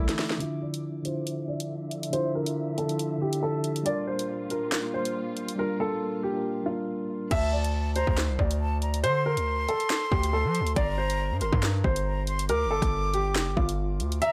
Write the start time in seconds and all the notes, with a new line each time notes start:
Already playing: D3 E3 A3 E4 A4 D5 E5
0.09 snare, closed hi-hat
0.19 snare, open hi-hat
0.30 snare
0.38 D3 F3 D4 E4 E5, closed hi-hat
0.43 F4
0.62 D5
0.74 closed hi-hat
1.02 D3 D4 E4 C5, closed hi-hat
1.08 F4
1.27 closed hi-hat
1.48 D5
1.60 closed hi-hat
1.91 closed hi-hat
2.03 closed hi-hat
2.10 D3 D4 E4 C5, closed hi-hat
2.16 F4
2.35 A#4
2.43 D3 D4 E4, closed hi-hat
2.49 F4
2.78 A4, closed hi-hat
2.86 D3 D4 E4, closed hi-hat
2.92 F4
2.99 closed hi-hat
3.18 D3 D4 E4 G4
3.24 G4
3.33 closed hi-hat
3.43 A4
3.64 closed hi-hat
3.76 closed hi-hat
3.83 A#2 G3 D4 F4 D5, closed hi-hat
3.89 A#4
4.07 C5
4.19 closed hi-hat
4.48 G3 D4 F4 A#4, closed hi-hat
4.53 A#4
4.72 snare, clap, closed hi-hat
4.94 C5
5.05 closed hi-hat
5.37 closed hi-hat
5.49 closed hi-hat
5.56 G3 D4 F4 A#4
5.61 A#4
5.80 A4
5.89 G3 D4 F4
5.94 A#3
6.23 G4
6.32 G3 D4 F4
6.37 A#4
6.63 G3 D4 F4
6.69 A#4
7.31 D2 E5 A5, kick, closed hi-hat, crash
7.52 D5
7.64 closed hi-hat
7.96 C5 A#5, closed hi-hat
8.07 D2, kick
8.17 snare, clap, closed hi-hat
8.29 C2
8.39 D2 D5, kick
8.51 closed hi-hat
8.61 A5
8.82 A#5, closed hi-hat
8.94 closed hi-hat
9.04 D3 C5 C6, closed hi-hat
9.26 A#4
9.37 D2, closed hi-hat
9.69 A4, closed hi-hat
9.80 closed hi-hat
9.90 snare, clap, closed hi-hat
10.12 D2 G4, kick
10.23 closed hi-hat
10.33 A4
10.45 F3
10.55 closed hi-hat
10.61 D2
10.67 closed hi-hat
10.76 G1 D5 A#5, kick, closed hi-hat
10.98 C5
11.10 closed hi-hat
11.31 G2
11.41 G1 A#4 C6, closed hi-hat
11.53 G2, kick
11.63 snare, clap, closed hi-hat
11.84 G1 C5, kick
11.96 closed hi-hat
12.06 A#5
12.27 C6, closed hi-hat
12.39 closed hi-hat
12.49 D2 A#4 D6, closed hi-hat
12.66 G1
12.71 A4
12.82 G1, kick, closed hi-hat
13.14 G4, closed hi-hat
13.35 F1, snare, clap, closed hi-hat
13.47 G1
13.57 G1 F4, kick
13.69 closed hi-hat
14.00 D2, closed hi-hat
14.12 closed hi-hat
14.22 E5 A#5, closed hi-hat